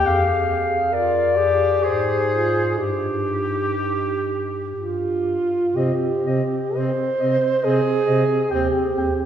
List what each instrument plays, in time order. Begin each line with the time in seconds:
Already playing: tenor saxophone G4
0.04 bass clarinet F2, alto saxophone G#4, clarinet F5
0.92 tenor saxophone F4, alto saxophone A#4, clarinet D5
1.36 tenor saxophone G4, alto saxophone G#4
1.83 bass clarinet G#2, alto saxophone G4, tenor saxophone G#4, clarinet C5
2.30 alto saxophone F4
2.77 bass clarinet G2, alto saxophone D#4, tenor saxophone G4, clarinet G4
4.75 bass clarinet G2, alto saxophone F4
5.75 bass clarinet C3, tenor saxophone C4, alto saxophone G4, clarinet D#5
6.26 bass clarinet C3, tenor saxophone C4, clarinet D#5
6.75 bass clarinet C3, tenor saxophone C4, alto saxophone C5, clarinet D#5
7.20 bass clarinet C3, tenor saxophone C4, clarinet D#5
7.62 bass clarinet C3, tenor saxophone C4, alto saxophone G#4, clarinet D#5
8.07 bass clarinet C3, tenor saxophone C4, clarinet D#5
8.51 bass clarinet D#2, tenor saxophone C4, alto saxophone G4, clarinet G5
8.95 bass clarinet D#2, tenor saxophone C4, clarinet G5